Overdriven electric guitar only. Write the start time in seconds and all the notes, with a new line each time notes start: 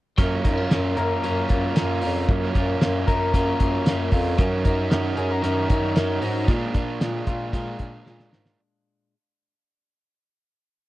0.18 F#3 A#3 C#4 F4 A#4
0.46 C#4 F4 A#4
0.72 A#3 C#4 F4 A#4
1.24 F#3 A#3 C#4 F4 A#4
1.76 A#3 C#4 F4 A#4
2.04 C#4 F4 A#4
2.31 F#3 A#3 C#4 F4 A#4
2.55 C#4 F4 A#4
2.81 A#3 C#4 F4 A#4
3.08 C#4 F4 A#4
3.34 F#3 A#3 C#4 F4 A#4
3.85 A#3 C#4 F4 A#4
4.12 C#4 F4 A#4
4.37 D#3 F#3 C#4 F#4 A#4
4.64 C#4 F#4 A#4
4.90 D#3 C#4 F#4 A#4
5.15 C#4 F#4 A#4
5.42 D#3 F#3 C#4 F#4 A#4
5.96 D#3 C#4 F#4 A#4
6.22 C#4 F#4 A#4
6.49 A#2 G#3 D4 F4 A#4
6.76 D4 F4 A#4
7.01 G#3 D4 F4 A#4
7.28 D4 F4 A#4
7.53 A#2 G#3 D4 F4 A#4
8.06 G#3 D4 F4 A#4
8.31 D4 F4 A#4